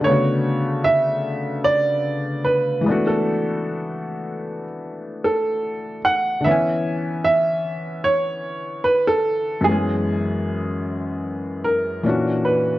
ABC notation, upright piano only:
X:1
M:4/4
L:1/16
Q:"Swing 16ths" 1/4=75
K:Bdor
V:1 name="Upright piano"
c4 e4 d4 B3 A- | A6- A z3 A4 f2 | e4 e4 c4 B A3 | G8- G2 ^A4 B2 |]